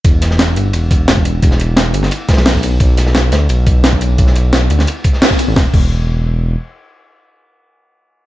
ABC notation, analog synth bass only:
X:1
M:4/4
L:1/16
Q:1/4=174
K:Em
V:1 name="Analog synth bass" clef=bass
E,,,6 G,,,2 E,,,8 | E,,,6 G,,,2 z3 B,,,3 B,,,2 | B,,,6 D,,2 B,,,8 | B,,,6 D,,2 z6 z A,,, |
E,,, z E,,,8- E,,,2 z4 | z16 |]